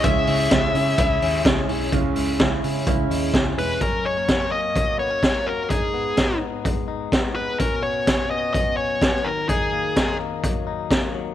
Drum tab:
RD |x-x-x-x-|--------|--------|--------|
HH |popopopo|xoxoxoxo|x-x-x-x-|x-x-x-x-|
SD |--o---o-|--o---o-|--o---o-|--o---o-|
BD |o-o-o-o-|o-o-o-o-|o-o-o-o-|o-o-o-o-|

RD |--------|--------|
HH |x-x-x-x-|x-x-x-x-|
SD |--o---o-|--o---o-|
BD |o-o-o-o-|o-o-o-o-|